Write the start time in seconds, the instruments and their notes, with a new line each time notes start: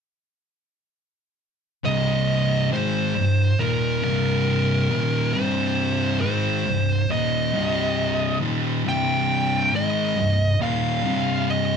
1.84 distorted electric guitar C2 G2 C3, lead electric guitar D#5
2.71 distorted electric guitar G#2 D#3 G#3, lead electric guitar C5
3.16 distorted electric guitar C2 G2
3.59 distorted electric guitar D#2 A#2 D#3, lead electric guitar A#4
4.04 distorted electric guitar C2 G2 C3, lead electric guitar A#4
4.91 distorted electric guitar D#2 A#2 D#3
5.33 distorted electric guitar C2 G2 C3, lead electric guitar C5
6.21 distorted electric guitar G#2 D#3 G#3, lead electric guitar C5
6.65 distorted electric guitar C2 G2
7.10 distorted electric guitar D#2 A#2 D#3, lead electric guitar D#5
7.53 distorted electric guitar C2 G2 C3
8.41 distorted electric guitar D#2 A#2 D#3
8.86 distorted electric guitar C2 G2 C3, lead electric guitar G5
9.73 distorted electric guitar G#2 D#3 G#3, lead electric guitar D#5
10.17 distorted electric guitar C2 G2
10.61 distorted electric guitar D#2 A#2 D#3, lead electric guitar F5
11.03 distorted electric guitar C2 G2 C3
11.50 lead electric guitar D#5